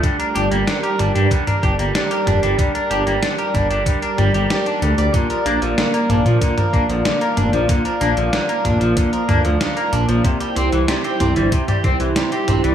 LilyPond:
<<
  \new Staff \with { instrumentName = "Analog synth pad" } { \time 4/4 \key bes \lydian \tempo 4 = 94 << { <g g' d''>1~ | <g g' d''>1 | <bes f''>1~ | <bes f''>1 |
<e' c''>1 | } \\ { bes'1~ | bes'1~ | bes'1~ | bes'1 |
g'1 | } >> }
  \new Staff \with { instrumentName = "Clean electric guitar" } { \time 4/4 \key bes \lydian d16 bes'16 d'16 g16 d16 bes'16 d'16 g16 d16 bes'16 d'16 g16 d16 bes'16 d'16 g16 | d16 bes'16 d'16 g16 d16 bes'16 d'16 g16 d16 bes'16 g16 g16 g'16 d'16 d16 d''16 | d16 bes'16 d'16 f16 d16 bes'16 d'16 f16 d16 bes'16 d'16 f16 d16 bes'16 d'16 f16 | d16 bes'16 d'16 f16 d16 bes'16 d'16 f16 d16 bes'16 d'16 f16 d16 bes'16 d'16 f16 |
c16 g'16 c'16 e16 c16 g'16 c'16 e16 c16 g'16 c'16 e16 c16 g'16 c'16 e16 | }
  \new Staff \with { instrumentName = "Clean electric guitar" } { \clef bass \time 4/4 \key bes \lydian g16 d'16 g'16 bes16 d'16 g'16 g16 d'16 g16 d'16 g'16 bes16 d'16 g'16 g16 d'16 | g16 d'16 g'16 bes16 d'16 g'16 g16 d'16 g16 d'16 g16 g'16 g16 d'16 g16 g16 | bes,16 f16 bes16 d16 f16 bes16 bes,16 f16 bes,16 f16 bes16 d16 f16 bes16 bes,16 f16 | bes,16 f16 bes16 d16 f16 bes16 bes,16 f16 bes,16 f16 bes16 d16 f16 bes16 bes,16 f16 |
c16 g16 c'16 e16 g16 c'16 c16 g16 c16 g16 c'16 e16 g16 c'16 c16 g16 | }
  \new Staff \with { instrumentName = "Detuned saw bass" } { \clef bass \time 4/4 \key bes \lydian r8 g,,16 g,,16 r8 g,,16 g,16 r8 g,,16 g,,16 r8 f,,16 g,,16 | r8 g,,16 g,,16 r8 g,,16 g,,16 r8 g,,16 g,,16 r8 d,16 d,16 | r8 bes,,16 bes,,16 r8 bes,,16 bes,16 r8 bes,,16 bes,,16 r8 f,,16 bes,,16 | r8 bes,,16 bes,,16 r8 bes,,16 bes,,16 r8 d,16 d,16 r8 bes,,16 bes,,16 |
r8 c,16 c,16 r8 c,16 g,,16 r8 c,16 c,16 r8 bes,,16 c,16 | }
  \new DrumStaff \with { instrumentName = "Drums" } \drummode { \time 4/4 <hh bd>16 hh16 hh16 hh16 <hh sn>16 hh16 <hh toml>16 hh16 <hh bd>16 <hh toml>16 <hh bd>16 hh16 <hh sn>16 hh16 <hh toml>16 hh16 | <hh bd>16 hh16 hh16 hh16 <hh sn>16 hh16 <hh bd toml>16 hh16 <hh bd>16 hh16 <hh toml>16 hh16 <hh sn>16 hh16 hh16 hh16 | <hh bd>16 hh16 hh16 hh16 <hh sn>16 hh16 <hh toml>16 hh16 <hh bd>16 <hh toml>16 <hh bd>16 hh16 <hh sn>16 hh16 <hh toml>16 hh16 | <hh bd>16 hh16 hh16 hh16 <hh sn>16 hh16 <hh bd toml>16 hh16 <hh bd>16 hh16 <hh toml>16 hh16 <hh sn>16 hh16 hh16 hh16 |
<hh bd>16 hh16 hh16 hh16 <hh sn>16 hh16 <hh toml>16 hh16 <hh bd>16 <hh toml>16 <hh bd>16 hh16 <hh sn>16 hh16 <hh toml>16 hh16 | }
>>